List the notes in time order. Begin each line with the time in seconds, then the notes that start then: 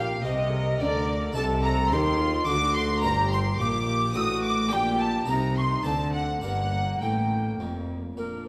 Already playing: A#1 A#2 A#3 D4 G4 F5
0.24 C2 C3 G4 D#5
0.53 A#4
0.79 D2 D3 D5
1.33 C3 A3 D#4 A4 A5
1.37 C2 C3 A4 A5
1.64 A#5
1.92 D#2 D#3 G4 C6
2.20 F4
2.45 D3 D4 A4 D6
2.49 D2 F#4 D6
2.74 C6
3.02 G1 G2 D4 G4 A#4 A#5 C6
3.09 A#5
3.31 C6
3.59 A#1 A#2 G4 D6
4.13 A1 A2 D4 F#4 C5 D#6 E6
4.21 D#6
4.43 D6
4.69 A#1 A#2 D4 G4 D5 G5
4.73 G5
5.00 A5
5.26 C2 C3 D#4 C5 A#5
5.57 C6 C#6
5.62 C6
5.83 D2 D3 C4 D4 C5 A5
6.13 F#5
6.41 G1 G2 A#3 D4 A#4 F#5
7.01 A1 A2 G5
7.58 F1 F2
8.17 A#2 A#3 D4 F4 A#4